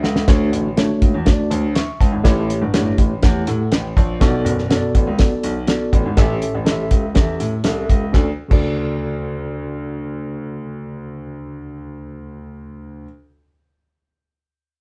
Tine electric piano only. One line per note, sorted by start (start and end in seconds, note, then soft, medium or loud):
0.00 0.50 A4 medium
0.00 0.25 E5 medium
0.00 0.50 F#5 medium
0.27 0.98 D3 medium
0.27 0.67 A3 loud
0.27 0.67 D4 medium
0.27 0.67 F#4 medium
0.27 0.67 C#5 loud
0.77 1.16 A3 medium
0.77 1.16 D4 medium
0.77 0.83 F4 medium
0.77 1.16 C#5 loud
0.83 1.19 F#4 medium
1.25 1.65 A3 medium
1.25 1.65 D4 medium
1.25 1.65 F#4 medium
1.25 1.32 C#5 medium
1.33 1.54 D5 medium
1.50 1.74 C#5 medium
1.50 1.74 A5 medium
1.75 1.99 E5 medium
1.75 1.99 C#6 medium
2.01 2.23 C#5 soft
2.01 2.47 A5 medium
2.23 2.94 A2 medium
2.23 2.63 A3 loud
2.23 2.63 E4 loud
2.23 2.63 G4 loud
2.23 2.64 C#5 loud
2.73 3.13 A3 medium
2.73 3.13 E4 medium
2.73 3.13 G4 medium
2.73 3.13 C#5 medium
3.22 3.61 A3 medium
3.22 3.62 E4 medium
3.22 3.62 G4 medium
3.22 3.47 C#5 medium
3.48 3.71 A4 medium
3.48 3.71 F#5 medium
3.72 3.95 B4 soft
3.72 3.95 G5 medium
3.96 4.20 C#5 medium
3.96 4.43 A5 medium
4.20 4.91 B2 medium
4.20 4.60 B3 loud
4.20 4.60 F#4 loud
4.20 4.60 A4 loud
4.20 4.27 C#5 medium
4.28 4.63 D5 loud
4.69 5.09 B3 medium
4.69 5.09 F#4 medium
4.69 5.09 A4 medium
4.69 4.76 C#5 medium
4.76 5.12 D5 loud
5.17 5.57 B3 medium
5.17 5.58 F#4 medium
5.17 5.58 A4 medium
5.17 5.58 D5 medium
5.67 6.07 B3 medium
5.67 6.07 F#4 medium
5.67 6.07 A4 medium
5.67 6.07 D5 medium
6.17 6.87 A2 medium
6.17 6.56 C#4 loud
6.17 6.56 G4 medium
6.17 6.57 A4 medium
6.17 6.57 E5 loud
6.65 7.05 C#4 medium
6.65 7.05 G4 medium
6.65 7.05 A4 medium
6.65 6.72 D#5 medium
6.72 7.08 E5 loud
7.14 7.54 C#4 medium
7.14 7.54 G4 medium
7.14 7.55 A4 medium
7.14 7.22 D#5 medium
7.21 7.58 E5 medium
7.64 8.04 C#4 medium
7.64 8.04 G4 medium
7.64 8.04 A4 medium
7.64 8.04 E5 medium
8.12 8.28 D2 medium
8.12 8.27 C#4 medium
8.12 8.27 F#4 medium
8.12 8.29 A4 medium
8.17 8.29 D5 medium
8.48 13.05 D2 medium
8.48 13.02 C#3 medium
8.48 13.04 F#4 medium
8.48 13.05 A4 medium
8.53 13.07 D5 medium